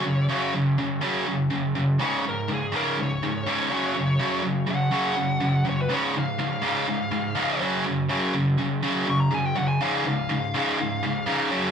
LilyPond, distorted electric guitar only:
\new Staff \with { instrumentName = "Distorted electric guitar" } { \clef bass \time 4/4 \key des \major \tempo 4 = 123 <ges, des>8 <ges, des ges>8 <ges, des>8 <ges, des>8 <ges, des ges>8 <ges, des>8 <ges, des>8 <ges, des>8 | <des, aes, des>8 <des, aes,>8 <des, aes,>8 <des, aes, des>8 <des, aes,>8 <des, aes,>8 <des, aes, des>8 <ges, des ges>8 | <ges, des>8 <ges, des ges>8 <ges, des>8 <ges, des>8 <ges, des ges>8 <ges, des>8 <ges, des>8 <ges, des>8 | <des, aes, des>8 <des, aes,>8 <des, aes,>8 <des, aes, des>8 <des, aes,>8 <des, aes,>8 <des, aes, des>8 <ges, des ges>8 |
<ges, des>8 <ges, des ges>8 <ges, des>8 <ges, des>8 <ges, des ges>8 <ges, des>8 <ges, des>8 <ges, des>8 | <des, aes, des>8 <des, aes,>8 <des, aes,>8 <des, aes, des>8 <des, aes,>8 <des, aes,>8 <des, aes, des>8 <ges, des ges>8 | }